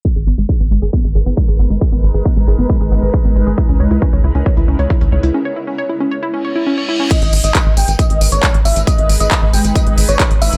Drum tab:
CC |----------------|----------------|----------------|----------------|
HH |xx-x-x-x-x-xxx-x|xx-xxx-xxx-xxx-x|xx-xxx-xxx-xxx-x|----------------|
TB |----------------|----------------|----------------|----------------|
CP |----------------|----------------|----------------|----------------|
BD |o---o---o---o---|o---o---o---o---|o---o---o---o---|----------------|

CC |x---------------|----------------|
HH |xxoxx-oxxxoxxxox|xxoxx-oxxxoxxxox|
TB |x-xxx-xxx-xxx-xx|x-xxx-xxx-xxx-xx|
CP |----x-------x---|----x-------x---|
BD |o---o---o---o---|o---o---o---o---|